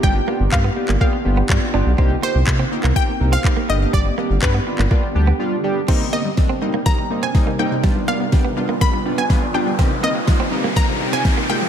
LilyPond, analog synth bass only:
\new Staff \with { instrumentName = "Analog synth bass" } { \clef bass \time 4/4 \key c \minor \tempo 4 = 123 g,,8 r16 g,,16 g,8 r16 g,,16 r8 g,,8 g,16 r16 g,,16 b,,16 | c,8 r16 c,16 c8 r16 c,16 r8 c,8 r8 g,,8 | g,,8 r16 g,,16 g,8 r16 g,,16 r8 d,8 r4 | r1 |
r1 | r1 | }